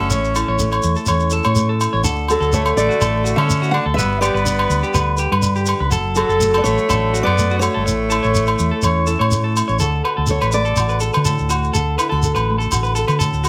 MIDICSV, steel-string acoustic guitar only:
0, 0, Header, 1, 2, 480
1, 0, Start_track
1, 0, Key_signature, 2, "major"
1, 0, Tempo, 485044
1, 114, Time_signature, 4, 2, 24, 8
1, 13349, End_track
2, 0, Start_track
2, 0, Title_t, "Steel-string acoustic guitar"
2, 0, Program_c, 0, 25
2, 0, Note_on_c, 0, 76, 85
2, 771, Note_off_c, 0, 76, 0
2, 2278, Note_on_c, 0, 69, 70
2, 2499, Note_off_c, 0, 69, 0
2, 2509, Note_on_c, 0, 73, 83
2, 2738, Note_off_c, 0, 73, 0
2, 2741, Note_on_c, 0, 74, 85
2, 3322, Note_off_c, 0, 74, 0
2, 3326, Note_on_c, 0, 76, 87
2, 3669, Note_off_c, 0, 76, 0
2, 3673, Note_on_c, 0, 78, 96
2, 3743, Note_off_c, 0, 78, 0
2, 3899, Note_on_c, 0, 76, 104
2, 4160, Note_off_c, 0, 76, 0
2, 4164, Note_on_c, 0, 74, 86
2, 5097, Note_off_c, 0, 74, 0
2, 6094, Note_on_c, 0, 69, 85
2, 6507, Note_on_c, 0, 74, 75
2, 6528, Note_off_c, 0, 69, 0
2, 6563, Note_off_c, 0, 74, 0
2, 6567, Note_on_c, 0, 73, 96
2, 7152, Note_off_c, 0, 73, 0
2, 7156, Note_on_c, 0, 74, 95
2, 7504, Note_off_c, 0, 74, 0
2, 7513, Note_on_c, 0, 73, 90
2, 9171, Note_off_c, 0, 73, 0
2, 10197, Note_on_c, 0, 73, 70
2, 10423, Note_off_c, 0, 73, 0
2, 10427, Note_on_c, 0, 74, 82
2, 10875, Note_off_c, 0, 74, 0
2, 13349, End_track
0, 0, End_of_file